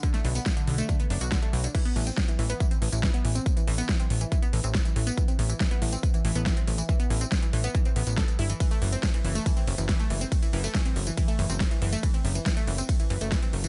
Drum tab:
CC |----------------|x---------------|----------------|----------------|
RD |----------------|----------------|----------------|----------------|
HH |xxoxxxoxxxoxxxox|xxoxxxoxxxoxxxox|xxoxxxoxxxoxxxox|xxoxxxoxxxoxxxox|
TB |xx-xxx-xxx-xxx-x|xx-xxx-xxx-xxx-x|xx-xxx-xxx-xxx-x|-x-xxx-xxx-xxx-x|
SD |-o--o-------o---|----o-------o---|----o-------o---|----o-------o---|
BD |o---o---o---o---|o---o---o---o---|o---o---o---o---|o---o---o---o---|

CC |----------------|----------------|----------------|----------------|
RD |----------------|x---x---x---x---|x---x---x---x---|x---x---x---x---|
HH |xxoxxxoxxxoxxxox|xxoxxxoxxxoxxxox|xxoxxxoxxxoxxxox|xxoxxxoxxxoxxxox|
TB |xx-xxx-xxx-x-x-x|xx-xxx-xxx-xxx-x|xx-xxx-xxx-xxx-x|xx-xxx-xxx-xxx-x|
SD |----o-------o---|----o-------o---|----o-------o---|----o-------o---|
BD |o---o---o---o---|o---o---o---o---|o---o---o---o---|o---o---o---o---|